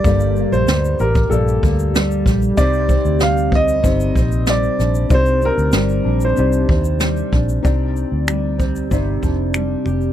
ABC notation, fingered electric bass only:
X:1
M:4/4
L:1/16
Q:1/4=95
K:Cdor
V:1 name="Fingered electric bass" clef=bass
G,,,3 B,,, D,,2 A,,,2 B,,,2 D,,4 B,,,2 | C,,3 D,,4- D,, G,,,2 B,,,4 B,,,2 | C,,3 D,, G,,,2 B,,,2 C,,2 E,,4 B,,,2 | C,,3 D,,4- D,, G,,,2 F,,,4 F,,,2 |]